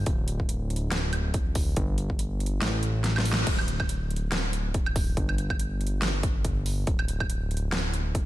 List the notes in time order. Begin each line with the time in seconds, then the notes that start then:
0.06 D1, kick, closed hi-hat
0.28 closed hi-hat
0.40 kick
0.49 closed hi-hat
0.70 closed hi-hat
0.76 closed hi-hat
0.92 snare, closed hi-hat
1.13 closed hi-hat, high woodblock
1.34 kick, closed hi-hat
1.55 kick, open hi-hat
1.76 G1, kick, closed hi-hat
1.98 closed hi-hat
2.10 kick
2.19 closed hi-hat
2.40 closed hi-hat
2.46 closed hi-hat
2.62 A1, snare, closed hi-hat
2.83 closed hi-hat
3.04 snare, closed hi-hat
3.16 snare, high woodblock
3.25 open hi-hat
3.33 snare
3.47 D1, kick, closed hi-hat, crash
3.59 high woodblock
3.68 closed hi-hat
3.80 kick, high woodblock
3.89 closed hi-hat
4.11 closed hi-hat
4.16 closed hi-hat
4.32 snare, closed hi-hat
4.53 closed hi-hat
4.74 kick, closed hi-hat
4.86 high woodblock
4.96 kick, open hi-hat
5.17 G1, kick, closed hi-hat
5.29 high woodblock
5.38 closed hi-hat
5.50 kick, high woodblock
5.59 closed hi-hat
5.81 closed hi-hat
5.87 closed hi-hat
6.02 snare, closed hi-hat
6.23 kick, closed hi-hat
6.45 kick, closed hi-hat
6.66 open hi-hat
6.87 D1, kick, closed hi-hat
6.99 high woodblock
7.08 closed hi-hat
7.20 kick, high woodblock
7.30 closed hi-hat
7.51 closed hi-hat
7.57 closed hi-hat
7.72 snare, closed hi-hat
7.94 closed hi-hat
8.15 kick, closed hi-hat